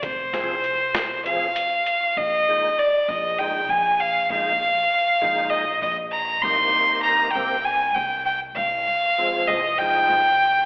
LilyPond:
<<
  \new Staff \with { instrumentName = "Violin" } { \time 7/8 \key bes \mixolydian \tempo 4 = 98 c''2 f''4. | ees''4 d''8 ees''8 g''8 aes''8 f''8 | f''2 ees''8 ees''8 bes''8 | c'''4 bes''8 g''8 aes''8 g''8 g''8 |
f''4. ees''8 g''4. | }
  \new Staff \with { instrumentName = "Tonewheel organ" } { \clef bass \time 7/8 \key bes \mixolydian r8 <f c' aes'>8 r4 <f c' aes'>8 r4 | r8 <bes, aes ees'>8 r4 <bes, aes ees'>8 r4 | <bes, aes ees'>8 r4 <bes, aes ees'>8 r4. | <c bes ees'>4. <c bes c'>8 r4. |
r4 <f aes c'>8 r8 <f aes ees'>8 r4 | }
  \new Staff \with { instrumentName = "Upright bass" } { \clef bass \time 7/8 \key bes \mixolydian f,,8 c,2 r4 | bes,,8 r4 bes,,4 bes,,4 | bes,,8 r4 bes,,4 bes,,4 | c,8 r4 c,4 c,4 |
c,8 r4 c,4 c,4 | }
  \new DrumStaff \with { instrumentName = "Drums" } \drummode { \time 7/8 <hh bd>8 <hh bd sn>8 hh8 <hh sn>8 hh8 hh8 hh8 | r4. r4 r4 | r4. r4 r4 | r4. r4 r4 |
r4. r4 r4 | }
>>